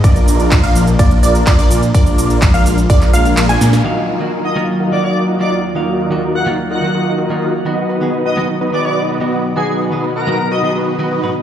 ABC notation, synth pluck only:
X:1
M:4/4
L:1/16
Q:1/4=126
K:Ebm
V:1 name="Synth pluck"
=d4- d f2 z d2 d2 d d2 z | =d4- d f2 z d2 f3 a3 | z16 | z16 |
z16 | z16 |]